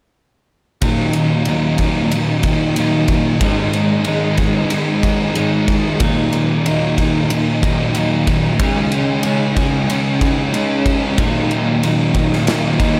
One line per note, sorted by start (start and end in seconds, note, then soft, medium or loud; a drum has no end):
0.81 1.46 D#2 medium
0.81 1.47 A#2 medium
0.81 1.48 A#2 medium
0.81 1.16 D#3 loud
0.81 1.48 D#3 medium
0.81 1.15 F#3 medium
0.81 1.14 A#3 medium
0.81 1.14 D#4 loud
0.81 kick loud
0.81 ride medium
1.13 1.45 D#3 medium
1.13 1.46 F#3 medium
1.13 1.47 A#3 medium
1.13 1.48 D#4 medium
1.13 ride medium
1.45 2.11 D#2 medium
1.45 2.13 A#2 medium
1.45 1.82 D#3 medium
1.45 1.80 F#3 medium
1.45 1.80 A#3 medium
1.45 1.79 D#4 medium
1.45 ride medium
1.49 2.14 D#3 medium
1.78 2.45 F#3 medium
1.78 2.44 A#3 medium
1.78 2.43 D#4 medium
1.78 kick medium
1.78 ride medium
1.83 2.45 D#3 medium
2.12 2.76 D#2 medium
2.12 2.46 A#2 medium
2.12 ride medium
2.16 2.44 D#3 medium
2.43 2.78 D#3 medium
2.43 2.75 D#3 medium
2.43 2.76 F#3 medium
2.43 2.76 A#3 medium
2.43 2.78 D#4 medium
2.43 kick medium
2.43 ride medium
2.48 2.77 A#2 soft
2.76 3.39 D#2 medium
2.76 3.40 A#2 medium
2.76 3.39 D#3 medium
2.76 3.41 D#3 medium
2.76 3.40 F#3 medium
2.76 3.40 A#3 medium
2.76 3.43 D#4 medium
2.76 ride medium
3.08 kick medium
3.08 ride medium
3.41 4.06 G#2 medium
3.41 4.05 G#2 medium
3.41 4.03 D#3 medium
3.41 4.06 D#3 medium
3.41 3.73 G#3 medium
3.41 4.07 G#3 loud
3.41 3.72 C#4 medium
3.41 3.71 D#4 loud
3.41 kick loud
3.41 ride medium
3.72 4.04 G#3 soft
3.72 4.04 C#4 medium
3.72 4.06 D#4 medium
3.72 ride medium
4.04 4.69 G#2 medium
4.04 4.70 D#3 medium
4.04 4.71 D#3 medium
4.04 4.40 G#3 medium
4.04 4.39 C#4 medium
4.04 4.38 D#4 medium
4.04 ride medium
4.08 4.72 G#3 medium
4.37 5.03 G#3 medium
4.37 5.01 C#4 medium
4.37 5.01 D#4 medium
4.37 kick medium
4.37 ride soft
4.70 5.34 G#2 medium
4.70 5.05 D#3 medium
4.70 5.03 G#3 loud
4.70 ride medium
5.02 5.37 G#3 medium
5.02 5.34 G#3 soft
5.02 5.35 C#4 medium
5.02 5.36 D#4 medium
5.02 kick medium
5.02 ride medium
5.06 5.35 D#3 medium
5.34 5.98 G#2 medium
5.34 5.98 D#3 medium
5.34 5.99 D#3 medium
5.34 5.98 G#3 medium
5.34 6.00 G#3 medium
5.34 5.99 C#4 medium
5.34 6.02 D#4 medium
5.34 ride medium
5.68 kick medium
5.68 ride soft
5.99 6.65 D#2 medium
5.99 6.65 A#2 medium
5.99 6.33 D#3 loud
5.99 6.33 F#3 loud
5.99 6.32 A#3 loud
5.99 6.31 D#4 loud
5.99 kick loud
5.99 ride medium
6.04 6.67 A#2 loud
6.04 6.67 D#3 medium
6.31 6.63 D#3 medium
6.31 6.64 F#3 medium
6.31 6.65 A#3 medium
6.31 6.67 D#4 medium
6.31 ride medium
6.64 7.30 D#2 medium
6.64 7.31 A#2 medium
6.64 7.00 D#3 medium
6.64 6.98 F#3 medium
6.64 6.97 A#3 medium
6.64 6.98 D#4 medium
6.64 ride medium
6.68 7.32 D#3 medium
6.98 7.64 D#3 soft
6.98 7.63 F#3 medium
6.98 7.62 A#3 medium
6.98 7.62 D#4 medium
6.98 kick medium
6.98 ride medium
7.30 7.94 D#2 medium
7.30 7.64 A#2 medium
7.30 7.62 D#3 loud
7.30 ride medium
7.62 7.95 A#2 soft
7.62 7.96 D#3 medium
7.62 7.94 D#3 medium
7.62 7.95 F#3 medium
7.62 7.95 A#3 medium
7.62 7.98 D#4 medium
7.62 kick medium
7.62 ride medium
7.95 8.57 D#2 medium
7.95 8.58 A#2 medium
7.95 8.58 D#3 medium
7.95 8.59 D#3 medium
7.95 8.58 F#3 medium
7.95 8.58 A#3 medium
7.95 8.61 D#4 medium
7.95 ride medium
8.27 kick medium
8.27 ride medium
8.59 9.24 C#3 medium
8.59 9.23 C#3 medium
8.59 9.23 G#3 loud
8.59 9.24 G#3 medium
8.59 8.93 C#4 medium
8.59 9.25 C#4 loud
8.59 8.92 D#4 medium
8.59 8.90 G#4 medium
8.59 kick loud
8.59 ride medium
8.92 9.24 C#4 medium
8.92 9.25 D#4 medium
8.92 9.25 G#4 medium
8.92 ride medium
9.23 9.87 C#3 medium
9.23 9.89 G#3 medium
9.23 9.88 G#3 medium
9.23 9.58 C#4 medium
9.23 9.89 C#4 medium
9.23 9.57 D#4 medium
9.23 9.55 G#4 medium
9.23 ride medium
9.56 10.23 C#4 soft
9.56 10.23 D#4 medium
9.56 10.21 G#4 medium
9.56 kick medium
9.56 ride medium
9.88 10.52 C#3 medium
9.88 10.23 G#3 medium
9.88 10.20 C#4 loud
9.88 ride medium
10.21 10.54 G#3 soft
10.21 10.55 C#4 medium
10.21 10.52 C#4 soft
10.21 10.54 D#4 medium
10.21 10.54 G#4 medium
10.21 kick medium
10.21 ride medium
10.52 11.16 C#3 medium
10.52 11.16 G#3 medium
10.52 11.17 G#3 medium
10.52 11.16 C#4 medium
10.52 11.18 C#4 medium
10.52 11.19 D#4 medium
10.52 11.17 G#4 medium
10.52 ride medium
10.86 kick medium
10.86 ride medium
11.17 11.82 D#2 medium
11.17 11.83 A#2 medium
11.17 11.51 D#3 medium
11.17 11.50 F#3 medium
11.17 11.49 A#3 loud
11.17 11.49 D#4 loud
11.17 kick loud
11.17 ride medium
11.22 11.84 D#3 medium
11.49 11.81 D#3 medium
11.49 11.82 F#3 medium
11.49 11.82 A#3 medium
11.49 11.84 D#4 medium
11.49 ride medium
11.82 12.46 D#2 medium
11.82 12.48 A#2 medium
11.82 12.15 D#3 medium
11.82 12.49 D#3 medium
11.82 12.14 F#3 medium
11.82 12.13 A#3 medium
11.82 12.14 D#4 medium
11.82 ride medium
12.14 12.80 D#3 soft
12.14 12.79 F#3 medium
12.14 12.78 A#3 medium
12.14 12.78 D#4 medium
12.14 kick medium
12.14 ride medium
12.33 snare soft
12.47 13.00 D#2 medium
12.47 12.81 A#2 medium
12.47 12.79 D#3 medium
12.47 snare loud
12.47 ride medium
12.79 13.00 A#2 soft
12.79 13.00 D#3 medium
12.79 13.00 F#3 medium
12.79 13.00 A#3 medium
12.79 13.00 D#4 medium
12.79 kick medium
12.79 ride medium